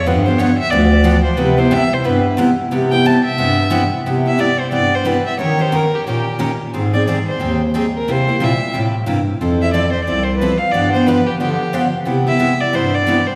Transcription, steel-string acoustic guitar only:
X:1
M:4/4
L:1/16
Q:"Swing" 1/4=179
K:C
V:1 name="Steel-string acoustic guitar"
[D,F,B,DG]2 [B,DG]2 [D,F,B,DG] z3 [D,F,B,DG]2 z2 [D,F,B,DG] z3 | [C,G,B,EG]2 [B,EG]2 [C,G,B,EG] z3 [C,G,B,EG]2 z2 [C,G,B,EG] z3 | [C,G,B,EG]2 [B,EG]2 [C,G,B,EG] z3 [C,G,B,EG]2 z2 [C,G,B,EG] z3 | [C,G,B,EG]2 [B,EG]2 [C,G,B,EG] z3 [C,G,B,EG]2 z2 [C,G,B,EG] z3 |
[_E,_B,_DG_B]2 [DGB]2 [E,B,DGB] z3 [E,B,DGB]2 z2 [E,B,DGB] z3 | [_E,G,C_E_A]2 [CEA]2 [E,G,CEA] z3 [E,G,CEA]2 z2 [E,G,CEA] z3 | [C,G,_B,EG]2 [B,EG]2 [C,G,B,EG] z3 [C,G,B,EG]2 z2 [C,G,B,EG] z3 | [F,CEA]2 [CEA]2 [F,CEA] z3 [F,CEA]2 z2 [F,CEA] z3 |
[D,F,B,DG]2 [B,DG]2 [D,F,B,DG] z3 [D,F,B,DG]2 z2 [D,F,B,DG] z3 | [C,G,B,EG]2 [B,EG]2 [C,G,B,EG] z3 [C,G,B,EG]2 z2 [C,G,B,EG] z3 |]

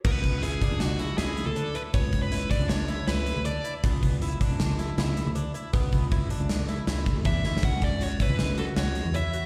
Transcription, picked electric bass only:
X:1
M:5/4
L:1/16
Q:1/4=158
K:Emix
V:1 name="Picked electric bass" clef=bass
C,,2 C,,4- C,, C,, C,,4 C,,3 D,,2 z3 | C,,2 C,,4- C,, C,, C,,4 C,,3 D,,2 z3 | C,,2 C,,4- C,, C,, C,,4 C,,3 D,,2 z3 | C,,2 C,,4- C,, C,, C,,4 C,,3 D,, E,,2 D,,2 |
C,,2 C,,4- C,, C,, C,,4 C,,3 E,,2 z3 |]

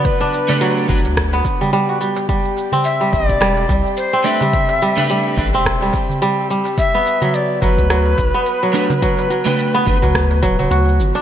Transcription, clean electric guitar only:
X:1
M:4/4
L:1/16
Q:"Swing 16ths" 1/4=107
K:G
V:1 name="Clean electric guitar"
z3 [A,DGB]3 [A,DGB] z8 z | z12 z2 [A,DGB] z | z3 [A,DGB]3 [A,DGB] z8 z | z12 z2 [A,DGB] z |
z3 [A,DBg]3 [A,DGB] z8 z |]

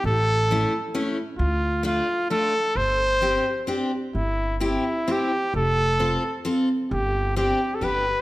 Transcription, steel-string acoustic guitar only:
X:1
M:3/4
L:1/8
Q:"Swing" 1/4=132
K:Gmix
V:1 name="Steel-string acoustic guitar"
z2 [A,^CE] z [A,CE] z | z2 [A,DF] z [A,DF] z | z2 [CDG] z [CDG] z | z2 [CEG] z [CEG] z |
z2 [CFA] z [CFA] z | z2 [CDG] z [B,DG] z |]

